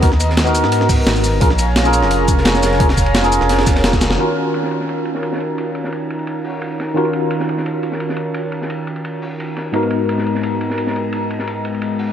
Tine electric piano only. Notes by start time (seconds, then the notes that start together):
0.02 B3 D#4 F#4 A#4
0.45 B3 D#4 F#4 A#4
1.40 C#4 F4 G#4 A#4
1.83 C#4 F4 G#4
1.87 A#4
2.79 C#4 F4 G#4 A#4
3.22 C#4 F4 G#4 A#4
4.17 D#3 C#4 F4 F#4 A#4
6.94 D#3 C#4 F4 F#4 A#4
9.72 G#2 B3 D#4 F#4 A#4